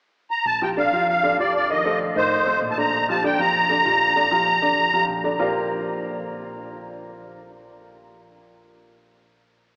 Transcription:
0.31 accordion A#5
0.45 fingered electric bass A#1, accordion A5
0.61 grand piano F3 F4 G4, accordion G5
0.77 grand piano D3 D4 D5, accordion F5
0.92 fingered electric bass F2, grand piano F3 F4 G4
1.09 accordion F5
1.23 grand piano D3 D4 D5
1.38 fingered electric bass F2, grand piano F3 F4 G4, accordion D5
1.56 accordion D5
1.70 grand piano D#3 D#4 D#5, accordion D#5
1.85 grand piano A3 A4 C5
2.15 fingered electric bass A2, grand piano D#3 D#4 D#5, accordion C5
2.46 grand piano A3 A4 C5
2.62 fingered electric bass A#2
2.71 accordion A5
2.77 grand piano D3 D4 D5, accordion A#5
3.08 grand piano F3 F4 G4, accordion A5
3.24 grand piano D3 D4 D5, accordion G5
3.39 fingered electric bass F2, grand piano F3 F4 G4, accordion A#5
3.70 grand piano D3 D4 D5
3.85 fingered electric bass A#1, grand piano F3 F4 G4
4.16 grand piano D3 D4 D5
4.31 grand piano F3 F4 G4
4.62 fingered electric bass F2, grand piano D3 D4 D5
4.93 grand piano F3 F4 G4
5.08 fingered electric bass A#1
5.24 grand piano D3 D4 D5
5.39 fingered electric bass A#1, grand piano A#3 F4 G4 A#4 C5 D5

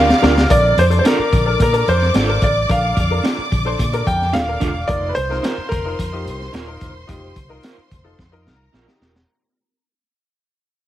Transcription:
Already playing: fingered electric bass D2, horn section G3 F4 A#4, violin section D5 D6, grand piano F5
0.10 snare
0.21 fingered electric bass D2, upright piano D4 F4 G4 A#4, clean electric guitar D4 F4 A#4, snare
0.38 snare
0.49 fingered electric bass A#1, upright piano D4 A4 A#4, violin section D5 D6, grand piano D5, kick, closed hi-hat
0.77 fingered electric bass F2, grand piano C5, closed hi-hat
0.90 upright piano D4 A4 C5, closed hi-hat
0.99 grand piano C5
1.04 clean electric guitar D4 F4 A4, grand piano A#4, snare, closed hi-hat
1.19 muted fingered electric bass stroke
1.33 fingered electric bass A#1, kick, closed hi-hat
1.45 upright piano D4 A4 A#4
1.60 fingered electric bass A#2, grand piano A#4, kick, closed hi-hat
1.73 upright piano D4 A4 A#4, closed hi-hat
1.88 fingered electric bass F2, grand piano C5, closed hi-hat
2.02 snare
2.14 fingered electric bass G#1, clean electric guitar D4 F4 A4, snare, closed hi-hat
2.27 upright piano D4 A4 A#4
2.42 fingered electric bass A1, grand piano D5, kick, closed hi-hat
2.69 fingered electric bass A#1, upright piano D4 A4 A#4, grand piano F5, kick, closed hi-hat
2.97 fingered electric bass F2, kick, closed hi-hat
3.10 upright piano D4 A4 A#4
3.23 clean electric guitar D4 F4 A4, snare, closed hi-hat
3.38 muted fingered electric bass stroke
3.52 fingered electric bass A#1, kick, closed hi-hat
3.65 upright piano D4 A4 C5
3.79 fingered electric bass A#2, kick, closed hi-hat
3.92 upright piano D4 A4 A#4, closed hi-hat
4.07 fingered electric bass F2, grand piano G5, kick, closed hi-hat
4.22 snare
4.33 fingered electric bass D#1, clean electric guitar D4 F4 A4, grand piano F5, snare, closed hi-hat
4.48 upright piano D4 A4 A#4
4.60 fingered electric bass E1, clean electric guitar D4 F4 A4, kick, snare, closed hi-hat
4.88 fingered electric bass F1, upright piano D#4 F4 A#4, violin section C5 C6, grand piano D5, kick, closed hi-hat
5.09 grand piano B4
5.15 fingered electric bass C2, grand piano C5, closed hi-hat
5.29 upright piano D#4 F4 A#4, snare
5.43 clean electric guitar D#4 F4 A#4, snare, closed hi-hat
5.57 muted fingered electric bass stroke
5.69 fingered electric bass F1, grand piano A#4, kick, closed hi-hat
5.85 upright piano D#4 F4 A#4
5.99 fingered electric bass F2, kick, closed hi-hat
6.12 upright piano D#4 F4 G4
6.26 fingered electric bass C2, closed hi-hat
6.41 snare
6.53 fingered electric bass D#1, clean electric guitar D#4 F4 A#4, snare, closed hi-hat
6.67 upright piano D#4 F4 A#4
6.81 fingered electric bass E1, kick, closed hi-hat
7.07 fingered electric bass F1, upright piano D#4 F4 G4, kick, closed hi-hat
7.36 fingered electric bass C2, kick, closed hi-hat
7.49 upright piano D#4 F4 A#4
7.63 clean electric guitar D#4 F4 A#4, snare, closed hi-hat
7.78 muted fingered electric bass stroke
7.91 fingered electric bass F1, kick, closed hi-hat
8.04 upright piano D#4 F4 A4
8.19 fingered electric bass F2, kick, snare
8.32 upright piano D#4 F4 A#4
8.46 fingered electric bass C2, violin section A#4 A#5, snare
8.72 fingered electric bass A#1, clean electric guitar D#4 F4 A#4, snare
8.86 upright piano D#4 F4 G4, snare
9.00 fingered electric bass E1, clean electric guitar D#4 F4 A#4, snare
9.16 snare

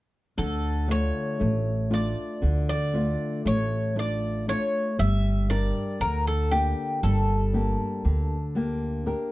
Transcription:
0.37 upright bass D2, nylon-string guitar D3, bouzouki A4
0.88 nylon-string guitar A3 D4 F4, bouzouki C#5
1.40 upright bass A1, nylon-string guitar A3
1.90 nylon-string guitar A3 D4 F4, bouzouki D5
2.42 upright bass D2, nylon-string guitar D3
2.69 bouzouki D5
2.94 nylon-string guitar A3 D4 F4
3.45 upright bass A1, nylon-string guitar A3, bouzouki C#5
3.96 nylon-string guitar A3 D4 F4, bouzouki D5
4.48 nylon-string guitar A3 D4 F4, bouzouki C#5
4.99 upright bass G1, nylon-string guitar G3, bouzouki E5
5.50 nylon-string guitar D4 G4 A#4, bouzouki D5
6.00 upright bass D2, nylon-string guitar D3, bouzouki A#4
6.27 bouzouki A4
6.51 nylon-string guitar A#3 D4 G4, bouzouki G4
7.03 upright bass G1, nylon-string guitar G3, bouzouki A4
7.53 nylon-string guitar A#3 D4 G4
8.04 upright bass D2, nylon-string guitar D3
8.55 nylon-string guitar A#3 D4 G4
9.06 nylon-string guitar D4 G4 A#4

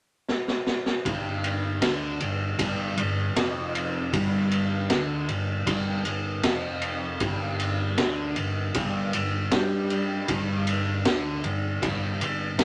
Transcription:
0.28 snare
0.48 snare
0.67 snare
0.86 snare
1.05 picked electric bass G1, distorted electric guitar G2, kick, ride
1.44 ride
1.81 picked electric bass D2, distorted electric guitar D3, snare, ride
2.20 picked electric bass G1, distorted electric guitar G2, ride
2.59 picked electric bass G1, distorted electric guitar G2, kick, ride
2.97 picked electric bass G1, distorted electric guitar G2, ride
3.36 picked electric bass F1, distorted electric guitar F2, snare, ride
3.75 ride
4.13 picked electric bass G1, distorted electric guitar G2, kick, ride
4.51 ride
4.90 picked electric bass D2, distorted electric guitar D3, snare, ride
5.28 picked electric bass G1, distorted electric guitar G2, ride
5.66 picked electric bass G1, distorted electric guitar G2, kick, ride
6.05 picked electric bass G1, distorted electric guitar G2, ride
6.43 picked electric bass F1, distorted electric guitar F2, snare, ride
6.82 ride
7.20 picked electric bass G1, distorted electric guitar G2, kick, ride
7.59 ride
7.98 picked electric bass D2, distorted electric guitar D3, snare, ride
8.36 picked electric bass G1, distorted electric guitar G2, ride
8.74 picked electric bass G1, distorted electric guitar G2, kick, ride
9.13 picked electric bass G1, distorted electric guitar G2, ride
9.51 picked electric bass G2, distorted electric guitar G3, snare, ride
9.90 ride
10.28 picked electric bass G1, distorted electric guitar G2, kick, ride
10.67 ride
11.05 picked electric bass D2, distorted electric guitar D3, snare, ride
11.44 picked electric bass G1, distorted electric guitar G2, ride
11.82 picked electric bass G1, distorted electric guitar G2, kick, ride
12.20 picked electric bass G1, distorted electric guitar G2, ride
12.58 picked electric bass G2, distorted electric guitar G3, snare, ride

